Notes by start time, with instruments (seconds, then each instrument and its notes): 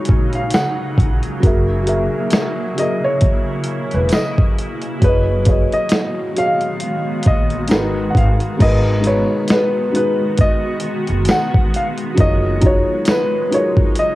Already playing: ambient pad C#3 F#3 A#3 D#4, felt piano F#3 D#4 F4 G#4 A#4 C#5, upright piano C#5
0.05 kick, closed hi-hat
0.10 upright bass A#1
0.33 upright piano F5, closed hi-hat
0.51 upright piano F#5, snare, closed hi-hat, tambourine
0.98 upright bass A#1, kick, closed hi-hat
1.23 closed hi-hat
1.40 upright bass F#1, ambient pad C#3 E4, felt piano F#3 F#4 G#4, kick, closed hi-hat
1.45 felt piano A#4 E5
1.82 felt piano F#3 F#4 G#4
1.87 felt piano A#4 E5, closed hi-hat
2.31 snare, closed hi-hat, tambourine
2.75 felt piano F#3 F#4 G#4, closed hi-hat
2.79 felt piano A#4 E5, upright piano D#5
3.04 upright piano C#5
3.21 kick, closed hi-hat
3.64 closed hi-hat
3.91 upright bass E1, upright piano B4, closed hi-hat
4.09 snare, closed hi-hat, tambourine
4.14 upright piano D#5
4.38 kick
4.58 closed hi-hat
4.82 closed hi-hat
4.99 upright bass F#1, ambient pad D#3 G#3 B3 F#4, felt piano F#3 F#4 G#4, kick, closed hi-hat
5.04 upright piano B4, felt piano C#5 D#5
5.43 felt piano F#3 F#4 G#4, kick, closed hi-hat
5.48 felt piano C#5 D#5
5.72 upright piano D#5, closed hi-hat
5.89 snare, closed hi-hat, tambourine
6.33 felt piano F#3 F#4 G#4, closed hi-hat
6.38 felt piano C#5 D#5, upright piano F5
6.46 felt piano F5
6.61 closed hi-hat
6.80 closed hi-hat
7.23 kick, closed hi-hat
7.27 upright bass A#1, upright piano D#5
7.50 closed hi-hat
7.68 felt piano G#3 D#4 F#4, snare, closed hi-hat, tambourine
7.72 upright bass G#1, felt piano A#4 B4
8.10 upright piano F#5
8.15 upright bass G#1, upright piano F5, kick, closed hi-hat
8.40 closed hi-hat
8.57 upright bass G#1, ambient pad D#3 G#3 B3 F#4, felt piano G#3 D#4 F#4, kick, closed hi-hat, crash
8.62 felt piano A#4 B4, upright piano D#5
9.00 felt piano G#3 D#4 F#4, closed hi-hat
9.05 felt piano G#4 B4, upright piano C#5
9.48 upright piano B4, snare, closed hi-hat, tambourine
9.91 felt piano G#3 D#4 F#4, closed hi-hat
9.96 felt piano G#4 B4, upright piano B4
10.38 upright piano D#5, kick, closed hi-hat
10.80 closed hi-hat
11.07 upright bass F#1, closed hi-hat
11.25 snare, closed hi-hat, tambourine
11.31 upright piano F#5
11.54 kick
11.74 upright piano F5, closed hi-hat
11.98 closed hi-hat
12.14 ambient pad C#3, felt piano F#3 D#4 F4 G#4, kick, closed hi-hat
12.18 upright bass F#1, ambient pad F#3 D#4, felt piano A#4 C#5, upright piano D#5
12.59 felt piano F#3 D#4 F4 G#4, kick, closed hi-hat
12.64 felt piano F#4 C#5, upright piano C#5
13.05 snare, closed hi-hat, tambourine
13.10 upright piano B4
13.50 felt piano F#3 D#4 F4 G#4, closed hi-hat
13.54 felt piano A#4 C#5, upright piano C#5
13.77 kick
13.95 upright piano D#5, closed hi-hat